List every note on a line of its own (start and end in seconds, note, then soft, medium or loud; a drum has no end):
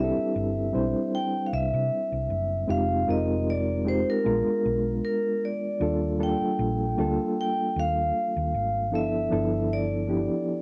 0.00 0.10 C2 medium
0.00 0.72 G3 medium
0.00 0.73 C4 medium
0.00 0.74 D4 medium
0.00 0.74 E4 medium
0.00 2.69 G4 medium
0.00 0.62 A4 medium
0.00 2.70 B4 medium
0.00 1.10 E5 medium
0.18 muted fingered electric bass stroke soft
0.36 0.70 G1 medium
0.72 0.93 B1 medium
0.72 1.96 G3 medium
0.72 1.97 C4 medium
0.72 1.97 D4 medium
0.72 1.97 E4 medium
0.72 1.98 C5 medium
1.15 1.47 G5 medium
1.46 1.52 F5 medium
1.53 1.71 C2 medium
1.53 2.73 E5 medium
1.74 1.89 C3 medium
2.12 2.28 C2 medium
2.30 2.64 F#1 medium
2.67 3.03 F1 medium
2.67 2.99 G#3 medium
2.67 2.99 C4 medium
2.67 3.00 D#4 medium
2.67 3.00 F4 medium
2.67 3.00 G4 medium
2.67 3.06 F5 medium
3.06 4.03 F1 medium
3.06 3.70 G#3 medium
3.06 3.70 C4 medium
3.06 3.70 D#4 medium
3.06 3.71 F4 medium
3.06 3.71 A#4 medium
3.06 3.49 D#5 medium
3.50 3.88 D5 medium
3.85 4.23 G#3 medium
3.85 4.24 C4 medium
3.85 4.25 D#4 medium
3.85 4.24 F4 medium
3.85 4.25 G4 medium
3.85 4.07 C5 medium
4.10 5.04 A#4 medium
4.24 4.44 A#1 medium
4.24 5.50 G#3 medium
4.24 5.50 B3 medium
4.24 5.50 D4 medium
4.24 5.50 F4 medium
4.24 5.51 A#4 medium
4.47 muted fingered electric bass stroke soft
4.65 4.99 B1 medium
5.05 5.44 A#4 medium
5.45 6.24 D5 medium
5.80 6.34 D#2 medium
5.80 6.12 G3 medium
5.80 6.12 A#3 medium
5.80 6.12 D4 medium
5.80 6.13 F4 medium
5.80 6.13 A4 medium
6.19 6.82 G3 medium
6.19 6.82 A#3 medium
6.19 6.83 D4 medium
6.19 6.83 F4 medium
6.19 6.83 A4 medium
6.23 7.39 G5 medium
6.41 muted fingered electric bass stroke soft
6.59 6.93 A#1 medium
6.97 7.17 D2 medium
6.97 8.21 G3 medium
6.97 8.21 A#3 medium
6.97 8.21 D4 medium
6.97 8.22 F4 medium
6.97 8.22 A4 medium
7.41 7.79 G5 medium
7.76 8.11 D#2 medium
7.76 8.98 F5 medium
8.36 8.52 D#2 medium
8.54 8.93 G#1 medium
8.91 9.27 G1 medium
8.91 9.23 F3 medium
8.91 9.23 B3 medium
8.91 9.24 D4 medium
8.91 9.24 E4 medium
8.91 9.24 A4 medium
8.95 9.74 E5 medium
9.30 10.27 G1 medium
9.30 9.93 F3 medium
9.30 9.94 B3 medium
9.30 9.94 D4 medium
9.30 9.94 E4 medium
9.30 9.95 A4 medium
9.73 10.62 D5 medium
10.07 10.62 F3 medium
10.07 10.62 B3 medium
10.07 10.62 D4 medium
10.07 10.62 E4 medium
10.07 10.62 G4 medium